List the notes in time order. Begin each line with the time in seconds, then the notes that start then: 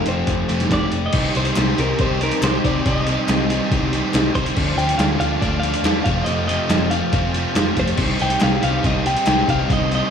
Already playing: F2 C3 F3 A3 C4 F4
0.06 F1 C4 C5, closed hi-hat
0.27 F1 A3, kick, closed hi-hat
0.49 F1 F2 C3 F3 A3 C4 F4, closed hi-hat
0.60 snare, closed hi-hat
0.70 F1 G4 D5, kick, snare, closed hi-hat
0.91 F1 A3, closed hi-hat
1.06 D#5
1.12 C2 C3 D#3 G3 C4 D#4 G4 D#5 C6, kick, closed hi-hat, crash
1.35 C2 C3 D#3 G3 C4 D#4 G4 C5, closed hi-hat
1.45 closed hi-hat
1.56 C2 C3 D#3 G3 C4 D#4 G4, snare, clap, closed hi-hat
1.78 C2 C3 D#3 G3 C4 D#4 G4 A#4, closed hi-hat
1.99 C2 C3 D#3 G3 C4 D#4 G4 C5, kick, closed hi-hat
2.21 C3 D#3 G3 C4 D#4 G4 A#4, closed hi-hat
2.31 closed hi-hat
2.42 C2 C3 D#3 G3 C4 D#4 G4 C5, snare, clap, closed hi-hat
2.64 C2 C3 D#3 G3 C4 D#4 G4 D5, kick, closed hi-hat
2.86 C2 C3 D#3 G3 C4 D#4 G4 D#5, kick, closed hi-hat
3.07 C3 D#3 G3 C4 D#4 G4, closed hi-hat
3.28 C2 C3 D#3 G3 C4 D#4 G4, snare, clap, closed hi-hat
3.50 C3 D#3 G3 C4 D#4 G4, closed hi-hat
3.70 C2 C3 D#3 G3 C4 D#4 G4, kick, closed hi-hat
3.93 C3 D#3 G3 C4 D#4 G4, closed hi-hat
4.14 C2 C3 D#3 G3 C4 D#4 G4, snare, clap, closed hi-hat
4.35 C2 C3 D#3 G3 C4 D#4 G4 C5, kick, closed hi-hat
4.46 closed hi-hat
4.55 D2 D3 F3 A3 D4 F4 D5, kick, crash
4.76 D2 D3 F3 A3 D4 F4 G5, closed hi-hat
4.89 closed hi-hat
4.98 D2 D3 F3 A3 D4 F4 F5, snare, clap, closed hi-hat
5.18 D2 D3 F3 A3 D4 F5, closed hi-hat
5.23 F4
5.40 D2 D3 F3 A3 D4 F4 D5, kick, closed hi-hat
5.60 D3 F3 F5, closed hi-hat
5.64 A3 D4 F4
5.74 closed hi-hat
5.83 E2 D3 F3 A3 D4 F4, snare, clap, closed hi-hat
6.04 F1 F2 C3 F3 A3 C4 F4 G4 F5 A5, kick, closed hi-hat
6.24 F1 F2 C3 F3 A3 C4 F4 D#5, closed hi-hat
6.47 F2 C3 F3 A3 C4 F4 D#5, closed hi-hat
6.69 F1 F2 C3 F3 A3 C4 F4, snare, clap, closed hi-hat
6.91 F2 C3 F3 A3 C4 F4 F5, closed hi-hat
7.13 F1 F2 C3 F3 A3 C4 F4, kick, closed hi-hat
7.34 F2 C3 F3 A3 C4 F4, closed hi-hat
7.55 F1 F2 C3 F3 A3 C4 F4, snare, clap, closed hi-hat
7.76 F1 F2 C3 F3 A3 C4 F4 C5, kick, closed hi-hat
7.88 closed hi-hat
7.97 C2 C3 D#3 G3 C4 D#4 G4 D#5, kick, crash
8.03 G4 C6
8.19 C2 C3 D#3 G3 C4 D#4 G4 G5, closed hi-hat
8.30 closed hi-hat
8.40 C2 C3 D#3 G3 C4 D#4 G4 F5, snare, clap, closed hi-hat
8.53 snare
8.62 C2 C3 D#3 G3 C4 D#4 G4 F5, closed hi-hat
8.83 C2 C3 D#3 G3 C4 D#4 G4 D#5, kick, closed hi-hat
9.05 C3 D#3 G3 C4 D#4 G4 G5, closed hi-hat
9.17 closed hi-hat
9.26 C2 C3 D#3 G3 C4 D#4 G4, snare, clap, closed hi-hat
9.48 C2 C3 D#3 G3 C4 D#4 G4 F5, kick, closed hi-hat
9.69 C2 C3 D#3 G3 C4 D#4 G4, kick, closed hi-hat
9.73 D#5
9.91 C3 D#3 G3 C4 D#4 G4, closed hi-hat
9.95 D#5